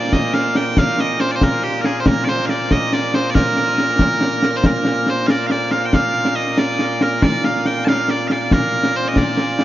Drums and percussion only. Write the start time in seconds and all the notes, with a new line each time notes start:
0.13 concert bass drum, snare
0.34 snare
0.45 snare
0.55 snare
0.77 concert bass drum, snare
0.99 snare
1.09 snare
1.20 snare
1.31 snare
1.41 concert bass drum, snare
1.84 snare
2.06 concert bass drum, snare
2.17 snare
2.27 snare
2.38 snare
2.49 snare
2.71 concert bass drum, snare
2.82 snare
2.93 snare
3.03 snare
3.14 snare
3.35 concert bass drum, snare
3.57 snare
3.68 snare
3.78 snare
3.89 snare
3.99 concert bass drum, snare
4.21 snare
4.43 snare
4.64 concert bass drum, snare
4.85 snare
5.07 snare
5.28 snare
5.50 snare
5.71 snare
5.93 concert bass drum, snare
6.25 snare
6.47 snare
6.58 snare
6.79 snare
7.01 snare
7.22 concert bass drum, snare
7.44 snare
7.65 snare
7.87 snare
8.08 snare
8.30 snare
8.51 concert bass drum, snare
8.83 snare
9.05 snare
9.16 concert bass drum, snare
9.37 snare
9.59 snare